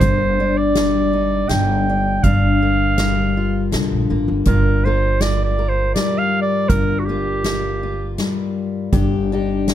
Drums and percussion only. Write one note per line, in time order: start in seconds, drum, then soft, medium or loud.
0.01 kick medium
0.01 closed hi-hat soft
0.75 snare medium
0.75 closed hi-hat soft
1.49 snare medium
1.49 closed hi-hat soft
2.24 kick medium
2.24 closed hi-hat soft
2.98 snare medium
2.98 closed hi-hat soft
3.72 snare medium
3.72 closed hi-hat soft
4.45 kick medium
4.45 closed hi-hat soft
5.21 snare medium
5.21 closed hi-hat soft
5.95 snare medium
5.95 closed hi-hat soft
6.70 kick medium
6.70 closed hi-hat soft
7.44 snare medium
7.44 closed hi-hat soft
8.18 snare medium
8.18 closed hi-hat soft
8.92 kick medium
8.92 closed hi-hat soft
9.68 snare medium
9.68 closed hi-hat soft